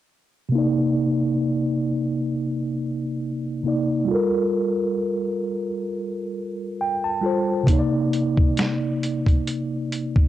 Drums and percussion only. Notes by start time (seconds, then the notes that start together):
7.67 kick, closed hi-hat
8.13 closed hi-hat
8.37 kick
8.57 finger snap, snare, closed hi-hat
9.03 closed hi-hat
9.27 kick, closed hi-hat
9.47 closed hi-hat
9.92 closed hi-hat
10.16 kick